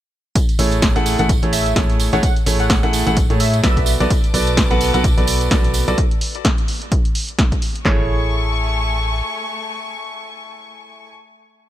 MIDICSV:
0, 0, Header, 1, 6, 480
1, 0, Start_track
1, 0, Key_signature, 3, "major"
1, 0, Tempo, 468750
1, 364, Time_signature, 4, 2, 24, 8
1, 11971, End_track
2, 0, Start_track
2, 0, Title_t, "Violin section"
2, 0, Program_c, 0, 48
2, 4203, Note_on_c, 0, 71, 78
2, 4203, Note_on_c, 0, 81, 71
2, 4204, Note_on_c, 0, 86, 88
2, 6104, Note_off_c, 0, 71, 0
2, 6104, Note_off_c, 0, 81, 0
2, 6105, Note_off_c, 0, 86, 0
2, 8043, Note_on_c, 0, 80, 75
2, 8044, Note_on_c, 0, 57, 82
2, 8044, Note_on_c, 0, 85, 92
2, 11359, Note_off_c, 0, 57, 0
2, 11359, Note_off_c, 0, 80, 0
2, 11360, Note_off_c, 0, 85, 0
2, 11971, End_track
3, 0, Start_track
3, 0, Title_t, "Digital synth lead"
3, 0, Program_c, 1, 84
3, 1563, Note_on_c, 1, 76, 91
3, 1774, Note_off_c, 1, 76, 0
3, 2181, Note_on_c, 1, 78, 88
3, 2247, Note_off_c, 1, 78, 0
3, 2284, Note_on_c, 1, 78, 76
3, 2372, Note_off_c, 1, 78, 0
3, 2661, Note_on_c, 1, 78, 85
3, 2727, Note_off_c, 1, 78, 0
3, 2764, Note_on_c, 1, 78, 75
3, 2852, Note_off_c, 1, 78, 0
3, 3484, Note_on_c, 1, 76, 92
3, 3694, Note_off_c, 1, 76, 0
3, 3724, Note_on_c, 1, 76, 93
3, 4019, Note_off_c, 1, 76, 0
3, 11971, End_track
4, 0, Start_track
4, 0, Title_t, "Grand piano"
4, 0, Program_c, 2, 0
4, 603, Note_on_c, 2, 64, 69
4, 603, Note_on_c, 2, 68, 70
4, 603, Note_on_c, 2, 69, 70
4, 603, Note_on_c, 2, 73, 85
4, 604, Note_on_c, 2, 57, 76
4, 948, Note_off_c, 2, 57, 0
4, 948, Note_off_c, 2, 64, 0
4, 948, Note_off_c, 2, 68, 0
4, 948, Note_off_c, 2, 69, 0
4, 948, Note_off_c, 2, 73, 0
4, 980, Note_on_c, 2, 78, 99
4, 981, Note_on_c, 2, 57, 91
4, 981, Note_on_c, 2, 64, 82
4, 981, Note_on_c, 2, 68, 83
4, 981, Note_on_c, 2, 69, 81
4, 1188, Note_off_c, 2, 57, 0
4, 1188, Note_off_c, 2, 64, 0
4, 1188, Note_off_c, 2, 68, 0
4, 1188, Note_off_c, 2, 69, 0
4, 1188, Note_off_c, 2, 78, 0
4, 1220, Note_on_c, 2, 68, 80
4, 1221, Note_on_c, 2, 57, 87
4, 1221, Note_on_c, 2, 64, 76
4, 1221, Note_on_c, 2, 69, 78
4, 1221, Note_on_c, 2, 78, 96
4, 1314, Note_off_c, 2, 57, 0
4, 1314, Note_off_c, 2, 64, 0
4, 1314, Note_off_c, 2, 68, 0
4, 1314, Note_off_c, 2, 69, 0
4, 1314, Note_off_c, 2, 78, 0
4, 1460, Note_on_c, 2, 64, 68
4, 1461, Note_on_c, 2, 57, 74
4, 1461, Note_on_c, 2, 68, 68
4, 1461, Note_on_c, 2, 69, 68
4, 1461, Note_on_c, 2, 73, 80
4, 1779, Note_off_c, 2, 57, 0
4, 1779, Note_off_c, 2, 64, 0
4, 1779, Note_off_c, 2, 68, 0
4, 1779, Note_off_c, 2, 69, 0
4, 1779, Note_off_c, 2, 73, 0
4, 1804, Note_on_c, 2, 57, 77
4, 1804, Note_on_c, 2, 64, 70
4, 1804, Note_on_c, 2, 68, 70
4, 1804, Note_on_c, 2, 69, 70
4, 1804, Note_on_c, 2, 73, 82
4, 2148, Note_off_c, 2, 57, 0
4, 2148, Note_off_c, 2, 64, 0
4, 2148, Note_off_c, 2, 68, 0
4, 2148, Note_off_c, 2, 69, 0
4, 2148, Note_off_c, 2, 73, 0
4, 2180, Note_on_c, 2, 57, 97
4, 2180, Note_on_c, 2, 64, 87
4, 2180, Note_on_c, 2, 68, 87
4, 2180, Note_on_c, 2, 69, 87
4, 2180, Note_on_c, 2, 73, 104
4, 2274, Note_off_c, 2, 57, 0
4, 2274, Note_off_c, 2, 64, 0
4, 2274, Note_off_c, 2, 68, 0
4, 2274, Note_off_c, 2, 69, 0
4, 2274, Note_off_c, 2, 73, 0
4, 2522, Note_on_c, 2, 57, 78
4, 2522, Note_on_c, 2, 64, 70
4, 2522, Note_on_c, 2, 68, 69
4, 2522, Note_on_c, 2, 73, 85
4, 2523, Note_on_c, 2, 69, 71
4, 2867, Note_off_c, 2, 57, 0
4, 2867, Note_off_c, 2, 64, 0
4, 2867, Note_off_c, 2, 68, 0
4, 2867, Note_off_c, 2, 69, 0
4, 2867, Note_off_c, 2, 73, 0
4, 2900, Note_on_c, 2, 57, 90
4, 2900, Note_on_c, 2, 64, 81
4, 2900, Note_on_c, 2, 68, 84
4, 2900, Note_on_c, 2, 69, 86
4, 2900, Note_on_c, 2, 78, 100
4, 3108, Note_off_c, 2, 57, 0
4, 3108, Note_off_c, 2, 64, 0
4, 3108, Note_off_c, 2, 68, 0
4, 3108, Note_off_c, 2, 69, 0
4, 3108, Note_off_c, 2, 78, 0
4, 3140, Note_on_c, 2, 57, 88
4, 3140, Note_on_c, 2, 64, 81
4, 3140, Note_on_c, 2, 68, 81
4, 3140, Note_on_c, 2, 69, 78
4, 3140, Note_on_c, 2, 78, 94
4, 3234, Note_off_c, 2, 57, 0
4, 3234, Note_off_c, 2, 64, 0
4, 3234, Note_off_c, 2, 68, 0
4, 3234, Note_off_c, 2, 69, 0
4, 3234, Note_off_c, 2, 78, 0
4, 3380, Note_on_c, 2, 57, 75
4, 3380, Note_on_c, 2, 64, 69
4, 3380, Note_on_c, 2, 68, 68
4, 3380, Note_on_c, 2, 69, 68
4, 3380, Note_on_c, 2, 73, 80
4, 3699, Note_off_c, 2, 57, 0
4, 3699, Note_off_c, 2, 64, 0
4, 3699, Note_off_c, 2, 68, 0
4, 3699, Note_off_c, 2, 69, 0
4, 3699, Note_off_c, 2, 73, 0
4, 3723, Note_on_c, 2, 59, 79
4, 3723, Note_on_c, 2, 66, 70
4, 3723, Note_on_c, 2, 69, 71
4, 3723, Note_on_c, 2, 71, 72
4, 3723, Note_on_c, 2, 74, 86
4, 4068, Note_off_c, 2, 59, 0
4, 4068, Note_off_c, 2, 66, 0
4, 4068, Note_off_c, 2, 69, 0
4, 4068, Note_off_c, 2, 71, 0
4, 4068, Note_off_c, 2, 74, 0
4, 4100, Note_on_c, 2, 59, 97
4, 4100, Note_on_c, 2, 69, 87
4, 4100, Note_on_c, 2, 74, 104
4, 4101, Note_on_c, 2, 66, 86
4, 4101, Note_on_c, 2, 71, 88
4, 4194, Note_off_c, 2, 59, 0
4, 4194, Note_off_c, 2, 66, 0
4, 4194, Note_off_c, 2, 69, 0
4, 4194, Note_off_c, 2, 71, 0
4, 4194, Note_off_c, 2, 74, 0
4, 4443, Note_on_c, 2, 59, 76
4, 4443, Note_on_c, 2, 66, 73
4, 4443, Note_on_c, 2, 69, 74
4, 4443, Note_on_c, 2, 71, 73
4, 4443, Note_on_c, 2, 74, 88
4, 4788, Note_off_c, 2, 59, 0
4, 4788, Note_off_c, 2, 66, 0
4, 4788, Note_off_c, 2, 69, 0
4, 4788, Note_off_c, 2, 71, 0
4, 4788, Note_off_c, 2, 74, 0
4, 4820, Note_on_c, 2, 59, 94
4, 4820, Note_on_c, 2, 66, 83
4, 4820, Note_on_c, 2, 69, 85
4, 4820, Note_on_c, 2, 71, 83
4, 4820, Note_on_c, 2, 78, 101
4, 5027, Note_off_c, 2, 66, 0
4, 5027, Note_off_c, 2, 69, 0
4, 5027, Note_off_c, 2, 71, 0
4, 5027, Note_off_c, 2, 78, 0
4, 5028, Note_off_c, 2, 59, 0
4, 5059, Note_on_c, 2, 59, 88
4, 5059, Note_on_c, 2, 66, 84
4, 5059, Note_on_c, 2, 69, 81
4, 5059, Note_on_c, 2, 71, 82
4, 5059, Note_on_c, 2, 78, 99
4, 5153, Note_off_c, 2, 59, 0
4, 5153, Note_off_c, 2, 66, 0
4, 5153, Note_off_c, 2, 69, 0
4, 5153, Note_off_c, 2, 71, 0
4, 5153, Note_off_c, 2, 78, 0
4, 5300, Note_on_c, 2, 59, 78
4, 5300, Note_on_c, 2, 66, 69
4, 5300, Note_on_c, 2, 69, 70
4, 5300, Note_on_c, 2, 71, 72
4, 5300, Note_on_c, 2, 74, 85
4, 5618, Note_off_c, 2, 66, 0
4, 5618, Note_off_c, 2, 69, 0
4, 5619, Note_off_c, 2, 59, 0
4, 5619, Note_off_c, 2, 71, 0
4, 5619, Note_off_c, 2, 74, 0
4, 5642, Note_on_c, 2, 66, 71
4, 5642, Note_on_c, 2, 74, 87
4, 5643, Note_on_c, 2, 59, 77
4, 5643, Note_on_c, 2, 69, 72
4, 5643, Note_on_c, 2, 71, 71
4, 5987, Note_off_c, 2, 66, 0
4, 5987, Note_off_c, 2, 71, 0
4, 5987, Note_off_c, 2, 74, 0
4, 5988, Note_off_c, 2, 59, 0
4, 5988, Note_off_c, 2, 69, 0
4, 6020, Note_on_c, 2, 66, 94
4, 6020, Note_on_c, 2, 69, 90
4, 6020, Note_on_c, 2, 71, 88
4, 6020, Note_on_c, 2, 74, 108
4, 6111, Note_off_c, 2, 66, 0
4, 6111, Note_off_c, 2, 69, 0
4, 6111, Note_off_c, 2, 71, 0
4, 6111, Note_off_c, 2, 74, 0
4, 8043, Note_on_c, 2, 64, 86
4, 8043, Note_on_c, 2, 68, 78
4, 8043, Note_on_c, 2, 69, 79
4, 8043, Note_on_c, 2, 73, 93
4, 11359, Note_off_c, 2, 64, 0
4, 11359, Note_off_c, 2, 68, 0
4, 11359, Note_off_c, 2, 69, 0
4, 11359, Note_off_c, 2, 73, 0
4, 11971, End_track
5, 0, Start_track
5, 0, Title_t, "FM bass"
5, 0, Program_c, 3, 39
5, 604, Note_on_c, 3, 33, 96
5, 954, Note_off_c, 3, 33, 0
5, 981, Note_on_c, 3, 33, 95
5, 1194, Note_off_c, 3, 33, 0
5, 1221, Note_on_c, 3, 33, 94
5, 1433, Note_off_c, 3, 33, 0
5, 1462, Note_on_c, 3, 33, 96
5, 1784, Note_off_c, 3, 33, 0
5, 1803, Note_on_c, 3, 33, 94
5, 2153, Note_off_c, 3, 33, 0
5, 2181, Note_on_c, 3, 33, 97
5, 2254, Note_off_c, 3, 33, 0
5, 2524, Note_on_c, 3, 33, 97
5, 2874, Note_off_c, 3, 33, 0
5, 2901, Note_on_c, 3, 33, 92
5, 3113, Note_off_c, 3, 33, 0
5, 3140, Note_on_c, 3, 33, 94
5, 3353, Note_off_c, 3, 33, 0
5, 3380, Note_on_c, 3, 45, 98
5, 3703, Note_off_c, 3, 45, 0
5, 3723, Note_on_c, 3, 35, 95
5, 4073, Note_off_c, 3, 35, 0
5, 4101, Note_on_c, 3, 35, 96
5, 4174, Note_off_c, 3, 35, 0
5, 4443, Note_on_c, 3, 35, 99
5, 4793, Note_off_c, 3, 35, 0
5, 4820, Note_on_c, 3, 35, 97
5, 5033, Note_off_c, 3, 35, 0
5, 5060, Note_on_c, 3, 35, 94
5, 5273, Note_off_c, 3, 35, 0
5, 5301, Note_on_c, 3, 35, 96
5, 5623, Note_off_c, 3, 35, 0
5, 5643, Note_on_c, 3, 35, 95
5, 5993, Note_off_c, 3, 35, 0
5, 6021, Note_on_c, 3, 35, 95
5, 6091, Note_off_c, 3, 35, 0
5, 8043, Note_on_c, 3, 33, 98
5, 9443, Note_off_c, 3, 33, 0
5, 11971, End_track
6, 0, Start_track
6, 0, Title_t, "Drums"
6, 362, Note_on_c, 9, 54, 51
6, 363, Note_on_c, 9, 36, 112
6, 364, Note_on_c, 9, 42, 92
6, 464, Note_off_c, 9, 54, 0
6, 466, Note_off_c, 9, 36, 0
6, 466, Note_off_c, 9, 42, 0
6, 501, Note_on_c, 9, 42, 39
6, 501, Note_on_c, 9, 54, 25
6, 603, Note_off_c, 9, 42, 0
6, 603, Note_on_c, 9, 46, 98
6, 604, Note_off_c, 9, 54, 0
6, 605, Note_on_c, 9, 54, 86
6, 706, Note_off_c, 9, 46, 0
6, 708, Note_off_c, 9, 54, 0
6, 733, Note_on_c, 9, 54, 41
6, 741, Note_on_c, 9, 42, 41
6, 835, Note_off_c, 9, 54, 0
6, 840, Note_on_c, 9, 54, 52
6, 843, Note_off_c, 9, 42, 0
6, 843, Note_on_c, 9, 36, 119
6, 843, Note_on_c, 9, 38, 116
6, 844, Note_on_c, 9, 42, 90
6, 943, Note_off_c, 9, 54, 0
6, 946, Note_off_c, 9, 36, 0
6, 946, Note_off_c, 9, 38, 0
6, 946, Note_off_c, 9, 42, 0
6, 981, Note_on_c, 9, 42, 37
6, 982, Note_on_c, 9, 54, 27
6, 1083, Note_off_c, 9, 42, 0
6, 1084, Note_on_c, 9, 46, 88
6, 1085, Note_off_c, 9, 54, 0
6, 1085, Note_on_c, 9, 54, 96
6, 1187, Note_off_c, 9, 46, 0
6, 1187, Note_off_c, 9, 54, 0
6, 1214, Note_on_c, 9, 54, 37
6, 1221, Note_on_c, 9, 42, 41
6, 1316, Note_off_c, 9, 54, 0
6, 1322, Note_on_c, 9, 54, 52
6, 1323, Note_on_c, 9, 36, 115
6, 1324, Note_off_c, 9, 42, 0
6, 1324, Note_on_c, 9, 42, 91
6, 1425, Note_off_c, 9, 36, 0
6, 1425, Note_off_c, 9, 54, 0
6, 1427, Note_off_c, 9, 42, 0
6, 1454, Note_on_c, 9, 54, 25
6, 1462, Note_on_c, 9, 42, 39
6, 1557, Note_off_c, 9, 54, 0
6, 1564, Note_off_c, 9, 42, 0
6, 1564, Note_on_c, 9, 46, 98
6, 1565, Note_on_c, 9, 54, 89
6, 1666, Note_off_c, 9, 46, 0
6, 1667, Note_off_c, 9, 54, 0
6, 1701, Note_on_c, 9, 42, 39
6, 1702, Note_on_c, 9, 54, 37
6, 1803, Note_off_c, 9, 42, 0
6, 1803, Note_on_c, 9, 36, 111
6, 1803, Note_on_c, 9, 38, 118
6, 1803, Note_on_c, 9, 42, 90
6, 1804, Note_off_c, 9, 54, 0
6, 1804, Note_on_c, 9, 54, 47
6, 1905, Note_off_c, 9, 36, 0
6, 1906, Note_off_c, 9, 38, 0
6, 1906, Note_off_c, 9, 42, 0
6, 1907, Note_off_c, 9, 54, 0
6, 1941, Note_on_c, 9, 42, 40
6, 1943, Note_on_c, 9, 54, 25
6, 2044, Note_off_c, 9, 42, 0
6, 2044, Note_off_c, 9, 54, 0
6, 2044, Note_on_c, 9, 46, 89
6, 2044, Note_on_c, 9, 54, 87
6, 2146, Note_off_c, 9, 46, 0
6, 2146, Note_off_c, 9, 54, 0
6, 2176, Note_on_c, 9, 54, 39
6, 2181, Note_on_c, 9, 42, 40
6, 2278, Note_off_c, 9, 54, 0
6, 2283, Note_on_c, 9, 36, 115
6, 2284, Note_off_c, 9, 42, 0
6, 2284, Note_on_c, 9, 42, 89
6, 2285, Note_on_c, 9, 54, 47
6, 2385, Note_off_c, 9, 36, 0
6, 2386, Note_off_c, 9, 42, 0
6, 2387, Note_off_c, 9, 54, 0
6, 2420, Note_on_c, 9, 54, 26
6, 2421, Note_on_c, 9, 42, 39
6, 2522, Note_off_c, 9, 54, 0
6, 2523, Note_on_c, 9, 46, 103
6, 2524, Note_off_c, 9, 42, 0
6, 2527, Note_on_c, 9, 54, 87
6, 2626, Note_off_c, 9, 46, 0
6, 2629, Note_off_c, 9, 54, 0
6, 2661, Note_on_c, 9, 42, 38
6, 2665, Note_on_c, 9, 54, 41
6, 2762, Note_off_c, 9, 54, 0
6, 2762, Note_on_c, 9, 38, 121
6, 2762, Note_on_c, 9, 54, 57
6, 2763, Note_off_c, 9, 42, 0
6, 2763, Note_on_c, 9, 36, 121
6, 2763, Note_on_c, 9, 42, 88
6, 2865, Note_off_c, 9, 36, 0
6, 2865, Note_off_c, 9, 38, 0
6, 2865, Note_off_c, 9, 42, 0
6, 2865, Note_off_c, 9, 54, 0
6, 2899, Note_on_c, 9, 54, 24
6, 2900, Note_on_c, 9, 42, 36
6, 3001, Note_off_c, 9, 54, 0
6, 3002, Note_off_c, 9, 42, 0
6, 3002, Note_on_c, 9, 46, 90
6, 3005, Note_on_c, 9, 54, 91
6, 3105, Note_off_c, 9, 46, 0
6, 3108, Note_off_c, 9, 54, 0
6, 3139, Note_on_c, 9, 42, 40
6, 3143, Note_on_c, 9, 54, 41
6, 3242, Note_off_c, 9, 42, 0
6, 3242, Note_off_c, 9, 54, 0
6, 3242, Note_on_c, 9, 42, 90
6, 3242, Note_on_c, 9, 54, 55
6, 3243, Note_on_c, 9, 36, 116
6, 3344, Note_off_c, 9, 54, 0
6, 3345, Note_off_c, 9, 36, 0
6, 3345, Note_off_c, 9, 42, 0
6, 3380, Note_on_c, 9, 42, 38
6, 3388, Note_on_c, 9, 54, 25
6, 3480, Note_off_c, 9, 54, 0
6, 3480, Note_on_c, 9, 54, 90
6, 3482, Note_off_c, 9, 42, 0
6, 3483, Note_on_c, 9, 46, 105
6, 3582, Note_off_c, 9, 54, 0
6, 3585, Note_off_c, 9, 46, 0
6, 3620, Note_on_c, 9, 42, 40
6, 3621, Note_on_c, 9, 54, 43
6, 3722, Note_off_c, 9, 54, 0
6, 3722, Note_on_c, 9, 54, 50
6, 3723, Note_off_c, 9, 42, 0
6, 3723, Note_on_c, 9, 36, 118
6, 3723, Note_on_c, 9, 38, 118
6, 3723, Note_on_c, 9, 42, 92
6, 3825, Note_off_c, 9, 36, 0
6, 3825, Note_off_c, 9, 38, 0
6, 3825, Note_off_c, 9, 42, 0
6, 3825, Note_off_c, 9, 54, 0
6, 3854, Note_on_c, 9, 54, 26
6, 3860, Note_on_c, 9, 36, 61
6, 3860, Note_on_c, 9, 42, 40
6, 3952, Note_off_c, 9, 54, 0
6, 3952, Note_on_c, 9, 54, 97
6, 3963, Note_off_c, 9, 36, 0
6, 3963, Note_off_c, 9, 42, 0
6, 3963, Note_on_c, 9, 46, 90
6, 4054, Note_off_c, 9, 54, 0
6, 4066, Note_off_c, 9, 46, 0
6, 4101, Note_on_c, 9, 42, 39
6, 4101, Note_on_c, 9, 54, 41
6, 4203, Note_off_c, 9, 42, 0
6, 4203, Note_off_c, 9, 54, 0
6, 4203, Note_on_c, 9, 36, 121
6, 4203, Note_on_c, 9, 42, 89
6, 4206, Note_on_c, 9, 54, 51
6, 4305, Note_off_c, 9, 36, 0
6, 4306, Note_off_c, 9, 42, 0
6, 4308, Note_off_c, 9, 54, 0
6, 4341, Note_on_c, 9, 42, 38
6, 4342, Note_on_c, 9, 54, 27
6, 4443, Note_off_c, 9, 42, 0
6, 4444, Note_off_c, 9, 54, 0
6, 4444, Note_on_c, 9, 46, 106
6, 4451, Note_on_c, 9, 54, 86
6, 4546, Note_off_c, 9, 46, 0
6, 4553, Note_off_c, 9, 54, 0
6, 4577, Note_on_c, 9, 54, 41
6, 4581, Note_on_c, 9, 42, 37
6, 4679, Note_off_c, 9, 54, 0
6, 4683, Note_off_c, 9, 42, 0
6, 4683, Note_on_c, 9, 36, 125
6, 4683, Note_on_c, 9, 38, 121
6, 4683, Note_on_c, 9, 42, 88
6, 4685, Note_on_c, 9, 54, 51
6, 4785, Note_off_c, 9, 36, 0
6, 4785, Note_off_c, 9, 38, 0
6, 4785, Note_off_c, 9, 42, 0
6, 4787, Note_off_c, 9, 54, 0
6, 4820, Note_on_c, 9, 42, 36
6, 4821, Note_on_c, 9, 54, 26
6, 4923, Note_off_c, 9, 42, 0
6, 4923, Note_off_c, 9, 54, 0
6, 4923, Note_on_c, 9, 46, 94
6, 4923, Note_on_c, 9, 54, 98
6, 5025, Note_off_c, 9, 46, 0
6, 5026, Note_off_c, 9, 54, 0
6, 5060, Note_on_c, 9, 42, 39
6, 5060, Note_on_c, 9, 54, 40
6, 5163, Note_off_c, 9, 42, 0
6, 5163, Note_off_c, 9, 54, 0
6, 5163, Note_on_c, 9, 36, 122
6, 5163, Note_on_c, 9, 42, 88
6, 5169, Note_on_c, 9, 54, 56
6, 5265, Note_off_c, 9, 36, 0
6, 5265, Note_off_c, 9, 42, 0
6, 5271, Note_off_c, 9, 54, 0
6, 5300, Note_on_c, 9, 42, 38
6, 5300, Note_on_c, 9, 54, 27
6, 5400, Note_off_c, 9, 54, 0
6, 5400, Note_on_c, 9, 54, 98
6, 5402, Note_on_c, 9, 46, 108
6, 5403, Note_off_c, 9, 42, 0
6, 5502, Note_off_c, 9, 54, 0
6, 5505, Note_off_c, 9, 46, 0
6, 5540, Note_on_c, 9, 42, 37
6, 5544, Note_on_c, 9, 54, 43
6, 5642, Note_off_c, 9, 42, 0
6, 5642, Note_on_c, 9, 38, 123
6, 5642, Note_on_c, 9, 42, 88
6, 5643, Note_on_c, 9, 36, 119
6, 5647, Note_off_c, 9, 54, 0
6, 5650, Note_on_c, 9, 54, 56
6, 5745, Note_off_c, 9, 36, 0
6, 5745, Note_off_c, 9, 38, 0
6, 5745, Note_off_c, 9, 42, 0
6, 5753, Note_off_c, 9, 54, 0
6, 5779, Note_on_c, 9, 42, 38
6, 5783, Note_on_c, 9, 54, 26
6, 5875, Note_off_c, 9, 54, 0
6, 5875, Note_on_c, 9, 54, 89
6, 5882, Note_off_c, 9, 42, 0
6, 5882, Note_on_c, 9, 46, 94
6, 5978, Note_off_c, 9, 54, 0
6, 5984, Note_off_c, 9, 46, 0
6, 6019, Note_on_c, 9, 42, 39
6, 6024, Note_on_c, 9, 54, 44
6, 6121, Note_off_c, 9, 42, 0
6, 6122, Note_on_c, 9, 42, 86
6, 6123, Note_on_c, 9, 36, 121
6, 6126, Note_off_c, 9, 54, 0
6, 6224, Note_off_c, 9, 42, 0
6, 6225, Note_off_c, 9, 36, 0
6, 6260, Note_on_c, 9, 42, 38
6, 6362, Note_off_c, 9, 42, 0
6, 6362, Note_on_c, 9, 46, 104
6, 6464, Note_off_c, 9, 46, 0
6, 6500, Note_on_c, 9, 42, 37
6, 6602, Note_off_c, 9, 42, 0
6, 6602, Note_on_c, 9, 38, 115
6, 6602, Note_on_c, 9, 42, 86
6, 6603, Note_on_c, 9, 36, 125
6, 6704, Note_off_c, 9, 38, 0
6, 6704, Note_off_c, 9, 42, 0
6, 6705, Note_off_c, 9, 36, 0
6, 6740, Note_on_c, 9, 42, 35
6, 6842, Note_off_c, 9, 42, 0
6, 6842, Note_on_c, 9, 46, 93
6, 6945, Note_off_c, 9, 46, 0
6, 6980, Note_on_c, 9, 42, 37
6, 7082, Note_off_c, 9, 42, 0
6, 7083, Note_on_c, 9, 36, 125
6, 7083, Note_on_c, 9, 42, 86
6, 7185, Note_off_c, 9, 36, 0
6, 7185, Note_off_c, 9, 42, 0
6, 7220, Note_on_c, 9, 42, 38
6, 7323, Note_off_c, 9, 42, 0
6, 7323, Note_on_c, 9, 46, 104
6, 7425, Note_off_c, 9, 46, 0
6, 7460, Note_on_c, 9, 42, 38
6, 7563, Note_off_c, 9, 42, 0
6, 7563, Note_on_c, 9, 36, 119
6, 7563, Note_on_c, 9, 38, 117
6, 7563, Note_on_c, 9, 42, 86
6, 7665, Note_off_c, 9, 36, 0
6, 7665, Note_off_c, 9, 38, 0
6, 7665, Note_off_c, 9, 42, 0
6, 7700, Note_on_c, 9, 36, 61
6, 7701, Note_on_c, 9, 42, 37
6, 7803, Note_off_c, 9, 36, 0
6, 7803, Note_off_c, 9, 42, 0
6, 7803, Note_on_c, 9, 46, 95
6, 7906, Note_off_c, 9, 46, 0
6, 7941, Note_on_c, 9, 42, 38
6, 8043, Note_off_c, 9, 42, 0
6, 8043, Note_on_c, 9, 36, 102
6, 8043, Note_on_c, 9, 38, 103
6, 8043, Note_on_c, 9, 39, 87
6, 8146, Note_off_c, 9, 36, 0
6, 8146, Note_off_c, 9, 38, 0
6, 8146, Note_off_c, 9, 39, 0
6, 11971, End_track
0, 0, End_of_file